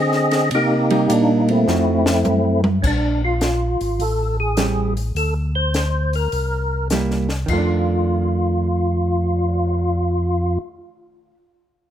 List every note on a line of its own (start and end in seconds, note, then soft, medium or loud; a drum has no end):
0.00 0.50 D3 medium
0.00 0.50 C4 medium
0.00 0.50 G#4 medium
0.00 0.50 D#5 medium
0.12 snare soft
0.31 snare soft
0.31 ride soft
0.51 1.08 C3 medium
0.51 1.40 D#4 medium
0.51 1.13 G4 medium
0.51 ride medium
0.55 1.65 A#3 medium
0.90 1.64 G3 medium
0.90 1.64 A#3 medium
0.90 1.65 D#4 medium
0.90 ride soft
1.10 1.66 A#2 medium
1.10 1.41 D4 medium
1.10 hi-hat pedal medium
1.10 ride medium
1.42 1.50 D#4 medium
1.49 2.61 A3 medium
1.49 2.61 C4 medium
1.49 2.62 E4 medium
1.49 ride soft
1.68 2.24 F2 medium
1.68 2.03 F3 medium
1.68 2.03 A3 medium
1.68 2.03 D#4 medium
1.68 2.03 F#4 medium
1.68 snare soft
2.06 snare medium
2.25 2.83 F#2 medium
2.25 hi-hat pedal medium
2.25 mid tom medium
2.64 mid tom medium
2.82 3.77 A#1 medium
2.82 2.85 C#4 medium
2.82 kick medium
2.82 crash medium
2.87 3.22 D4 medium
3.25 4.03 F4 medium
3.41 snare medium
3.41 closed hi-hat soft
3.81 3.99 G#1 medium
3.81 open hi-hat soft
3.99 5.12 A1 medium
3.99 4.37 A4 medium
3.99 open hi-hat soft
4.40 4.94 G#4 medium
4.57 4.93 G3 medium
4.57 4.93 C4 medium
4.57 4.94 E4 medium
4.57 snare medium
4.57 closed hi-hat medium
4.97 open hi-hat soft
5.15 6.28 D2 medium
5.15 5.34 A4 medium
5.15 open hi-hat soft
5.55 6.15 C5 medium
5.74 snare medium
5.74 closed hi-hat soft
6.13 6.88 A#4 medium
6.13 open hi-hat soft
6.32 7.45 C2 medium
6.32 open hi-hat soft
6.90 7.27 G3 medium
6.90 7.27 A#3 medium
6.90 7.27 E4 medium
6.90 snare medium
6.90 closed hi-hat soft
7.11 snare soft
7.29 snare soft
7.46 10.58 F2 medium
7.46 11.31 D#3 medium
7.46 10.59 F4 medium
7.46 kick soft
7.46 crash medium
7.53 11.34 A3 medium
7.58 11.37 D4 medium
7.87 cymbal swell soft